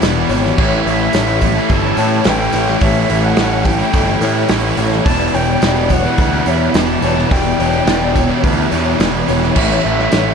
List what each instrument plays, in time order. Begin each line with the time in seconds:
Already playing: analog synth pad B3 E4 G4 D5
0.01 picked electric bass E1, overdriven electric guitar E2 B2 E3 G3 B3 E4, distorted electric guitar E2 B2 E3, clean electric guitar B4, snare, open hi-hat, tambourine
0.16 distorted electric guitar B2 E3, overdriven electric guitar E3 G3 B3 E4
0.29 picked electric bass G#1, distorted electric guitar E2 B2 E3, overdriven electric guitar E3 G3 B3 E4, clean electric guitar C#5, open hi-hat, tambourine
0.43 distorted electric guitar B2 E3, snare
0.57 picked electric bass A1, distorted electric guitar A2 E3 A3, overdriven electric guitar A2 E3 G3 C#4 E4, analog synth pad A3 C#5, clean electric guitar C#5, flute E5, kick, crash, tambourine
0.72 distorted electric guitar E3 A3
0.85 picked electric bass A1, overdriven electric guitar A2 E3 G3 A3 C#4 E4, clean electric guitar B4, open hi-hat, tambourine
0.99 overdriven electric guitar G3 C#4 E4
1.13 picked electric bass A1, distorted electric guitar A2 E3 A3, overdriven electric guitar A2 E3 G3 C#4 E4, clean electric guitar C#5, snare, open hi-hat, tambourine
1.27 distorted electric guitar E3 A3, overdriven electric guitar G3 C#4 E4
1.41 overdriven electric guitar A2 E3 A3, clean electric guitar B4, muted distorted electric guitar stroke, muted overdriven electric guitar stroke, kick, open hi-hat, tambourine
1.55 distorted electric guitar E3 A3, overdriven electric guitar G3 C#4 E4
1.69 picked electric bass G1, overdriven electric guitar A2 E3 A3, clean electric guitar A4, flute A5, kick, open hi-hat, tambourine
1.83 distorted electric guitar E3 A3, overdriven electric guitar G3 C#4 E4, tambourine
1.97 distorted electric guitar A2 E3 A3, picked electric bass A2, overdriven electric guitar E3 G3 C#4 E4, clean electric guitar C#5, open hi-hat, tambourine
2.24 picked electric bass A1, overdriven electric guitar A2 E3 G3 C#4 E4, distorted electric guitar A2 E3 A3, clean electric guitar B4, flute G5, snare, open hi-hat, tambourine
2.39 distorted electric guitar E3 A3, overdriven electric guitar G3 C#4 E4
2.52 picked electric bass A1, distorted electric guitar A2 E3 A3, overdriven electric guitar E3 G3 C#4 E4, clean electric guitar C#5, open hi-hat, tambourine
2.67 distorted electric guitar E3 A3, snare
2.80 picked electric bass A1, overdriven electric guitar A2 E3 G3 C#4 E4, distorted electric guitar A2 E3 A3, clean electric guitar C#5, flute E5, kick, open hi-hat, tambourine
2.95 distorted electric guitar E3 A3
3.09 picked electric bass A1, overdriven electric guitar A2 E3 G3 A3 C#4 E4, clean electric guitar B4, open hi-hat, tambourine
3.23 overdriven electric guitar G3 C#4 E4, flute F#5
3.37 picked electric bass A1, overdriven electric guitar A2 E3 G3 C#4 E4, distorted electric guitar A2 E3 A3, clean electric guitar C#5, snare, open hi-hat, tambourine
3.51 distorted electric guitar E3 A3, overdriven electric guitar G3 C#4 E4
3.64 overdriven electric guitar A2 E3 A3, clean electric guitar B4, flute G5, muted distorted electric guitar stroke, muted overdriven electric guitar stroke, kick, open hi-hat, tambourine
3.78 distorted electric guitar E3 A3, overdriven electric guitar G3 C#4 E4
3.92 picked electric bass G1, overdriven electric guitar A2 E3 A3, clean electric guitar A4, kick, open hi-hat, tambourine
4.06 overdriven electric guitar G3 C#4 E4, distorted electric guitar A3, tambourine
4.10 distorted electric guitar E3
4.21 picked electric bass A2, distorted electric guitar A2 E3 A3, overdriven electric guitar E3 G3 C#4 E4, clean electric guitar C#5, open hi-hat, tambourine
4.48 picked electric bass A1, overdriven electric guitar A2 E3 G3 C#4 E4, distorted electric guitar A2 E3 A3, clean electric guitar B4, snare, open hi-hat, tambourine
4.63 distorted electric guitar E3 A3, overdriven electric guitar G3 C#4 E4
4.76 picked electric bass A1, distorted electric guitar A2 E3, overdriven electric guitar E3 G3 C#4 E4, clean electric guitar C#5, open hi-hat, tambourine
4.80 distorted electric guitar A3
4.91 distorted electric guitar E3 A3, snare
5.04 picked electric bass E1, overdriven electric guitar E2 B2 E3 G3 B3 E4, distorted electric guitar E2 B2, analog synth pad B3 D5, clean electric guitar D5, flute A5, kick, open hi-hat, tambourine
5.09 distorted electric guitar E3
5.20 distorted electric guitar B2 E3
5.33 picked electric bass E1, overdriven electric guitar E2 B2 E3 G3 B3 E4, clean electric guitar C#5, flute G5, open hi-hat, tambourine
5.48 overdriven electric guitar E3 G3 B3 E4
5.60 picked electric bass E1, overdriven electric guitar E2 B2 E3 G3 B3 E4, distorted electric guitar E2 B2 E3, clean electric guitar D5, snare, open hi-hat, tambourine
5.76 distorted electric guitar B2 E3, overdriven electric guitar E3 G3 B3 E4
5.90 overdriven electric guitar E2 B2 E3, clean electric guitar C#5, flute F#5, muted distorted electric guitar stroke, muted overdriven electric guitar stroke, kick, open hi-hat, tambourine
6.03 distorted electric guitar B2 E3, overdriven electric guitar G3 B3 E4
6.07 overdriven electric guitar E3
6.18 picked electric bass D2, overdriven electric guitar E2 B2 E3, clean electric guitar B4, kick, open hi-hat, tambourine
6.31 distorted electric guitar B2 E3, overdriven electric guitar E3 G3 B3 E4, tambourine
6.45 distorted electric guitar E2 B2 E3, picked electric bass E2, overdriven electric guitar E3 G3, clean electric guitar C#5, flute E5, open hi-hat, tambourine
6.49 overdriven electric guitar B3 E4
6.73 picked electric bass E1, distorted electric guitar E2 B2 E3, overdriven electric guitar E2 B2 E3 G3 B3, clean electric guitar B4, flute A5, snare, open hi-hat, tambourine
6.77 overdriven electric guitar E4
6.87 distorted electric guitar B2 E3, overdriven electric guitar B3 E4
6.91 overdriven electric guitar E3 G3
7.02 picked electric bass E1, distorted electric guitar E2 B2 E3, overdriven electric guitar E3 G3 B3, clean electric guitar C#5, open hi-hat, tambourine
7.06 overdriven electric guitar E4
7.16 distorted electric guitar B2 E3, snare
7.30 picked electric bass E1, distorted electric guitar E2 B2 E3, overdriven electric guitar E2 B2 E3 G3 B3, clean electric guitar D5, flute G5, kick, open hi-hat, tambourine
7.34 overdriven electric guitar E4
7.44 distorted electric guitar B2 E3
7.58 picked electric bass E1, overdriven electric guitar E2 B2 E3 G3 B3 E4, clean electric guitar C#5, open hi-hat, tambourine
7.73 overdriven electric guitar E3 G3 B3 E4, tambourine
7.86 picked electric bass E1, overdriven electric guitar E2 B2 E3 G3 B3 E4, distorted electric guitar E2 B2 E3, clean electric guitar D5, snare, open hi-hat, tambourine
8.00 distorted electric guitar B2 E3, overdriven electric guitar E3 G3 B3 E4, tambourine
8.15 overdriven electric guitar E2 B2 E3, clean electric guitar C#5, muted overdriven electric guitar stroke, muted distorted electric guitar stroke, kick, open hi-hat, tambourine
8.28 distorted electric guitar B2 E3, overdriven electric guitar E3 G3 B3 E4, tambourine
8.44 picked electric bass D2, overdriven electric guitar E2 B2 E3, clean electric guitar B4, kick, open hi-hat, tambourine
8.57 distorted electric guitar B2 E3, overdriven electric guitar E3 G3 B3 E4, tambourine
8.69 distorted electric guitar E2 B2, picked electric bass E2, overdriven electric guitar E3 G3 B3 E4, clean electric guitar C#5, open hi-hat, tambourine
8.73 distorted electric guitar E3
8.86 tambourine
8.98 picked electric bass E1, distorted electric guitar E2 B2 E3, overdriven electric guitar E2 B2 E3 G3 B3 E4, clean electric guitar B4, snare, open hi-hat, tambourine
9.13 distorted electric guitar B2 E3, overdriven electric guitar E3 G3 B3 E4, tambourine
9.27 picked electric bass E1, distorted electric guitar E2 B2 E3, overdriven electric guitar E3 G3 B3 E4, clean electric guitar C#5, open hi-hat, tambourine
9.42 distorted electric guitar B2 E3, snare, tambourine
9.55 picked electric bass A1, overdriven electric guitar A2 E3 G3 C#4 E4, distorted electric guitar A2 E3 A3, analog synth pad A3 E4 G4 C#5, clean electric guitar C#5, flute E5, kick, crash, tambourine
9.70 distorted electric guitar E3 A3
9.83 picked electric bass A1, overdriven electric guitar A2 E3 G3 A3 C#4 E4, clean electric guitar B4, tambourine
9.97 overdriven electric guitar G3 C#4 E4, snare
10.12 picked electric bass A1, overdriven electric guitar A2 E3 G3 C#4 E4, distorted electric guitar A2 E3 A3, clean electric guitar C#5, snare, open hi-hat, tambourine
10.26 distorted electric guitar E3 A3, overdriven electric guitar G3 C#4 E4